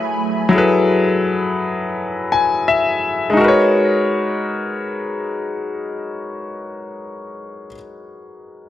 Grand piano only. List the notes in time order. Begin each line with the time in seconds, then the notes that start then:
Already playing: F#3 E4 G#4 A4 B4
0.49 F#3 E4
0.54 G#4 A4
0.58 B4
2.32 G#5
2.68 E5
3.30 G#3 D#4
3.37 F#4 A#4
3.44 B4 C#5